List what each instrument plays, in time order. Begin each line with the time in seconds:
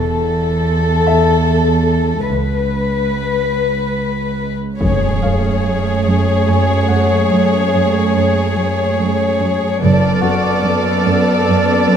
Already playing: double bass section E1, cello section E2, grand piano D#4 D#6, violin section A4
1.07 grand piano E5
2.29 double bass section C#2, cello section C#2, violin section B4
4.79 double bass section F#1, cello section F#2, viola section A3, violin section G#4 C#5, impact
5.22 cello section F#2, grand piano F5
5.65 cello section F#2
6.06 cello section F#2
6.48 cello section F#2, grand piano G#5
6.88 cello section F#2, grand piano F#5
7.32 cello section F#2
7.74 cello section F#2
8.15 cello section F#2
8.55 cello section F#2
8.98 cello section F#2
9.39 cello section F#2
9.81 double bass section F#1, cello section F#2, viola section B3, violin section A4 D5 D6 F6
10.21 cello section F#2, grand piano F#4 F#5
10.65 cello section F#2, violin section E6
11.06 cello section F#2
11.48 cello section F#2
11.88 cello section F#2